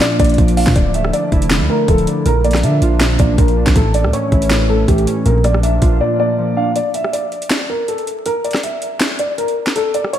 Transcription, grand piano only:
0, 0, Header, 1, 2, 480
1, 0, Start_track
1, 0, Tempo, 375000
1, 969, Time_signature, 4, 2, 24, 8
1, 13041, End_track
2, 0, Start_track
2, 0, Title_t, "Grand piano"
2, 0, Program_c, 0, 0
2, 10, Note_on_c, 0, 74, 90
2, 198, Note_off_c, 0, 74, 0
2, 251, Note_on_c, 0, 74, 93
2, 701, Note_off_c, 0, 74, 0
2, 730, Note_on_c, 0, 77, 91
2, 918, Note_off_c, 0, 77, 0
2, 970, Note_on_c, 0, 74, 85
2, 1158, Note_off_c, 0, 74, 0
2, 1210, Note_on_c, 0, 76, 87
2, 1398, Note_off_c, 0, 76, 0
2, 1450, Note_on_c, 0, 74, 82
2, 2127, Note_off_c, 0, 74, 0
2, 2170, Note_on_c, 0, 70, 84
2, 2358, Note_off_c, 0, 70, 0
2, 2409, Note_on_c, 0, 69, 83
2, 2597, Note_off_c, 0, 69, 0
2, 2892, Note_on_c, 0, 70, 98
2, 3079, Note_off_c, 0, 70, 0
2, 3129, Note_on_c, 0, 74, 82
2, 3317, Note_off_c, 0, 74, 0
2, 3370, Note_on_c, 0, 76, 81
2, 4047, Note_off_c, 0, 76, 0
2, 4088, Note_on_c, 0, 74, 75
2, 4276, Note_off_c, 0, 74, 0
2, 4327, Note_on_c, 0, 70, 84
2, 4516, Note_off_c, 0, 70, 0
2, 4808, Note_on_c, 0, 69, 90
2, 4997, Note_off_c, 0, 69, 0
2, 5049, Note_on_c, 0, 74, 84
2, 5237, Note_off_c, 0, 74, 0
2, 5291, Note_on_c, 0, 73, 87
2, 5967, Note_off_c, 0, 73, 0
2, 6009, Note_on_c, 0, 69, 82
2, 6197, Note_off_c, 0, 69, 0
2, 6250, Note_on_c, 0, 67, 72
2, 6437, Note_off_c, 0, 67, 0
2, 6728, Note_on_c, 0, 70, 81
2, 6916, Note_off_c, 0, 70, 0
2, 6968, Note_on_c, 0, 74, 81
2, 7157, Note_off_c, 0, 74, 0
2, 7209, Note_on_c, 0, 76, 80
2, 7660, Note_off_c, 0, 76, 0
2, 7690, Note_on_c, 0, 74, 90
2, 7878, Note_off_c, 0, 74, 0
2, 7931, Note_on_c, 0, 74, 95
2, 8381, Note_off_c, 0, 74, 0
2, 8409, Note_on_c, 0, 77, 90
2, 8597, Note_off_c, 0, 77, 0
2, 8650, Note_on_c, 0, 74, 83
2, 8838, Note_off_c, 0, 74, 0
2, 8890, Note_on_c, 0, 76, 83
2, 9078, Note_off_c, 0, 76, 0
2, 9129, Note_on_c, 0, 74, 80
2, 9806, Note_off_c, 0, 74, 0
2, 9850, Note_on_c, 0, 70, 77
2, 10037, Note_off_c, 0, 70, 0
2, 10090, Note_on_c, 0, 69, 79
2, 10278, Note_off_c, 0, 69, 0
2, 10572, Note_on_c, 0, 70, 100
2, 10759, Note_off_c, 0, 70, 0
2, 10809, Note_on_c, 0, 74, 81
2, 10997, Note_off_c, 0, 74, 0
2, 11051, Note_on_c, 0, 76, 79
2, 11727, Note_off_c, 0, 76, 0
2, 11768, Note_on_c, 0, 74, 72
2, 11956, Note_off_c, 0, 74, 0
2, 12007, Note_on_c, 0, 70, 82
2, 12195, Note_off_c, 0, 70, 0
2, 12488, Note_on_c, 0, 69, 88
2, 12676, Note_off_c, 0, 69, 0
2, 12729, Note_on_c, 0, 74, 81
2, 12917, Note_off_c, 0, 74, 0
2, 12968, Note_on_c, 0, 73, 88
2, 13041, Note_off_c, 0, 73, 0
2, 13041, End_track
0, 0, End_of_file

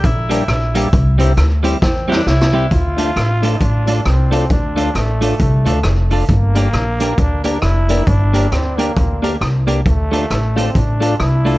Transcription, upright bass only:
0, 0, Header, 1, 2, 480
1, 0, Start_track
1, 0, Key_signature, -1, "minor"
1, 0, Tempo, 446429
1, 996, Time_signature, 4, 2, 24, 8
1, 12451, End_track
2, 0, Start_track
2, 0, Title_t, "Upright bass"
2, 0, Program_c, 0, 32
2, 40, Note_on_c, 0, 34, 104
2, 446, Note_off_c, 0, 34, 0
2, 516, Note_on_c, 0, 34, 102
2, 924, Note_off_c, 0, 34, 0
2, 998, Note_on_c, 0, 36, 116
2, 1405, Note_off_c, 0, 36, 0
2, 1471, Note_on_c, 0, 38, 109
2, 1881, Note_off_c, 0, 38, 0
2, 1958, Note_on_c, 0, 40, 98
2, 2365, Note_off_c, 0, 40, 0
2, 2430, Note_on_c, 0, 36, 99
2, 2841, Note_off_c, 0, 36, 0
2, 2916, Note_on_c, 0, 38, 101
2, 3324, Note_off_c, 0, 38, 0
2, 3398, Note_on_c, 0, 33, 89
2, 3806, Note_off_c, 0, 33, 0
2, 3879, Note_on_c, 0, 33, 98
2, 4287, Note_off_c, 0, 33, 0
2, 4361, Note_on_c, 0, 36, 103
2, 4768, Note_off_c, 0, 36, 0
2, 4836, Note_on_c, 0, 38, 110
2, 5245, Note_off_c, 0, 38, 0
2, 5319, Note_on_c, 0, 33, 96
2, 5727, Note_off_c, 0, 33, 0
2, 5806, Note_on_c, 0, 36, 100
2, 6046, Note_off_c, 0, 36, 0
2, 6082, Note_on_c, 0, 38, 97
2, 6248, Note_off_c, 0, 38, 0
2, 6280, Note_on_c, 0, 29, 90
2, 6688, Note_off_c, 0, 29, 0
2, 6762, Note_on_c, 0, 31, 110
2, 7169, Note_off_c, 0, 31, 0
2, 7239, Note_on_c, 0, 34, 93
2, 7647, Note_off_c, 0, 34, 0
2, 7718, Note_on_c, 0, 38, 102
2, 8127, Note_off_c, 0, 38, 0
2, 8198, Note_on_c, 0, 29, 90
2, 8607, Note_off_c, 0, 29, 0
2, 8678, Note_on_c, 0, 31, 113
2, 9087, Note_off_c, 0, 31, 0
2, 9156, Note_on_c, 0, 38, 96
2, 9565, Note_off_c, 0, 38, 0
2, 9638, Note_on_c, 0, 38, 93
2, 10046, Note_off_c, 0, 38, 0
2, 10117, Note_on_c, 0, 36, 90
2, 10526, Note_off_c, 0, 36, 0
2, 10597, Note_on_c, 0, 38, 100
2, 11006, Note_off_c, 0, 38, 0
2, 11079, Note_on_c, 0, 33, 88
2, 11487, Note_off_c, 0, 33, 0
2, 11559, Note_on_c, 0, 33, 90
2, 11967, Note_off_c, 0, 33, 0
2, 12041, Note_on_c, 0, 36, 94
2, 12448, Note_off_c, 0, 36, 0
2, 12451, End_track
0, 0, End_of_file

